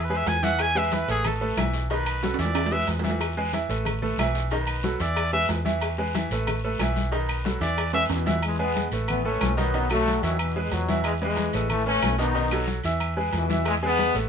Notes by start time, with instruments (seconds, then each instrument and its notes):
Already playing: fingered electric bass E2
0.05 trumpet B4
0.10 upright piano G#3 G#4 B4, cowbell, high conga
0.17 trumpet E5
0.27 fingered electric bass E2, trumpet G#5, cowbell, low timbale, low agogo, short guiro
0.43 upright piano E3 E4 E5, trumpet F#5, cowbell, high conga, short guiro
0.59 trumpet G#5, cowbell, high conga, low agogo, long guiro, claves
0.75 upright piano G#3 G#4 B4, trumpet E5, cowbell, high conga
0.92 upright piano E3 E4 E5, trumpet B4, cowbell, high conga, low timbale, low agogo, short guiro
1.08 fingered electric bass A1, upright piano A3 A4 B4, trumpet G#4, high conga, low agogo, short guiro
1.24 trumpet A4, cowbell, high conga, low conga, low agogo, long guiro, claves
1.41 upright piano A3 A4 B4, high conga
1.57 fingered electric bass B1, upright piano E3 E4 E5, cowbell, high conga, low timbale, low agogo, short guiro, claves
1.73 cowbell, short guiro
1.90 upright piano D#3 D#4 D#5, trumpet B4, cowbell, high conga, low agogo, long guiro
2.06 high conga, low agogo, claves
2.23 upright piano F#3 F#4 A4, cowbell, high conga, high timbale, short guiro
2.34 high timbale
2.39 fingered electric bass E2, upright piano E3 E4 E5, trumpet D5, cowbell, high conga, low agogo, short guiro
2.44 low timbale
2.55 cowbell, high conga, high timbale, low agogo, long guiro, claves
2.66 low timbale
2.72 upright piano G#3 G#4 B4, trumpet E5, cowbell, high conga
2.87 fingered electric bass E2, cowbell, high conga, low timbale, low agogo, short guiro
2.99 low timbale
3.04 upright piano E3 E4 E5, cowbell, high conga, short guiro
3.10 low timbale
3.20 cowbell, high conga, low agogo, long guiro, claves
3.37 upright piano G#3 G#4 B4, cowbell, high conga
3.53 upright piano E3 E4 E5, cowbell, high conga, low timbale, low agogo, short guiro
3.69 fingered electric bass A1, upright piano A3 A4 B4, high conga, low agogo, short guiro
3.85 cowbell, high conga, low conga, low agogo, long guiro, claves
4.02 upright piano A3 A4 B4, high conga, low conga
4.17 fingered electric bass B1, upright piano E3 E4 E5, cowbell, high conga, low timbale, low agogo, short guiro, claves
4.35 cowbell, short guiro
4.51 upright piano D#3 D#4 D#5, trumpet B4, cowbell, high conga, low agogo, long guiro
4.67 high conga, low agogo, claves
4.83 upright piano F#3 F#4 A4, cowbell, high conga, low timbale, short guiro
5.00 fingered electric bass E2, upright piano E3 E4 E5, trumpet D5, cowbell, high conga, low agogo, short guiro
5.16 cowbell, high conga, low agogo, long guiro, claves
5.33 upright piano G#3 G#4 B4, trumpet E5, cowbell, high conga
5.49 fingered electric bass E2, cowbell, low timbale, low agogo, short guiro
5.65 upright piano E3 E4 E5, cowbell, high conga, short guiro
5.81 cowbell, high conga, low agogo, long guiro, claves
5.98 upright piano G#3 G#4 B4, cowbell, high conga
6.14 upright piano E3 E4 E5, cowbell, high conga, low timbale, low agogo, short guiro
6.30 fingered electric bass A1, upright piano A3 A4 B4, high conga, low agogo, short guiro
6.47 cowbell, high conga, low conga, low agogo, long guiro, claves
6.64 upright piano A3 A4 B4, high conga
6.79 fingered electric bass B1, upright piano E3 E4 E5, cowbell, high conga, low timbale, low agogo, short guiro, claves
6.96 cowbell, high conga, short guiro
7.12 upright piano D#3 D#4 D#5, trumpet B4, cowbell, high conga, low agogo, long guiro
7.29 high conga, low agogo, claves
7.45 upright piano F#3 F#4 A4, cowbell, high conga, low timbale, short guiro
7.60 fingered electric bass E2, upright piano E3 E4 E5, trumpet D5, cowbell, high conga, low agogo, short guiro
7.78 cowbell, high conga, low agogo, long guiro, claves
7.93 upright piano G#3 G#4 B4, trumpet E5, cowbell, high conga, high timbale
8.10 fingered electric bass E2, trombone section B2 E3, cowbell, high conga, high timbale, low agogo, short guiro
8.26 upright piano E3 E4 E5, cowbell, high conga, low timbale, short guiro
8.42 trombone section E3 G#3, high conga, low agogo, long guiro, claves
8.59 upright piano G#3 G#4 B4, trombone section G#3 B3
8.76 high conga, low timbale, low agogo, short guiro
8.92 fingered electric bass A1, upright piano A3 A4 B4, high conga, low agogo, short guiro
9.08 trombone section E3 B3, high conga, low conga, low agogo, long guiro, claves
9.24 upright piano A3 A4 B4, trombone section A3 C#4, high conga
9.41 fingered electric bass B1, high conga, low timbale, low agogo, short guiro, claves
9.56 upright piano D#3 D#4 D#5, trombone section F#3 B3, high conga, short guiro
9.74 upright piano D#3 D#4 D#5, high conga, low agogo, long guiro
9.90 upright piano F#3 F#4 A4, trombone section F#3 A3, high conga, low agogo, claves
10.07 high conga, low timbale, short guiro
10.21 fingered electric bass E2, trombone section D#3 F#3, upright piano E3 E4 E5, high conga, low agogo, short guiro
10.38 trombone section B2 E3, high conga, low agogo, long guiro, claves
10.56 upright piano G#3 G#4 B4, high conga
10.64 trombone section G#3
10.71 fingered electric bass E2, trombone section B2 F#3, low timbale, low agogo, short guiro
10.88 upright piano E3 E4 E5, high conga, short guiro
11.03 trombone section E3 G#3, low agogo, long guiro, claves
11.19 trombone section E3 G#3, upright piano G#3 G#4 B4, high conga
11.36 high conga, low timbale, low agogo, short guiro
11.53 fingered electric bass A1, upright piano A3 A4 B4, high conga, low agogo, short guiro
11.69 trombone section E3 A3, high conga, low conga, low agogo, long guiro, claves
11.86 upright piano A3 A4 B4, trombone section A3 C#4, high conga
12.02 fingered electric bass B1, high conga, low timbale, low agogo, short guiro, claves
12.18 upright piano D#3 D#4 D#5, trombone section B3 D#4, short guiro
12.35 upright piano D#3 D#4 D#5, high conga, low agogo, long guiro
12.51 upright piano F#3 F#4 A4, high conga, low agogo, claves
12.68 high conga, low timbale, short guiro
12.84 fingered electric bass E2, upright piano E3 E4 E5, high conga, low agogo, short guiro
13.00 high conga, low agogo, long guiro, claves
13.17 upright piano G#3 G#4 B4, high conga
13.33 fingered electric bass E2, trombone section B2 E3, high conga, low timbale, low agogo, short guiro
13.50 upright piano E3 E4 E5, high conga, short guiro
13.65 trombone section E3 G#3, cowbell, low agogo, long guiro, claves
13.82 upright piano G#3 G#4 B4, trombone section G#3 B3, cowbell, high conga
13.98 cowbell, high conga, low timbale, low agogo, short guiro
14.14 fingered electric bass A1, upright piano A3 A4 B4, high conga, low agogo, short guiro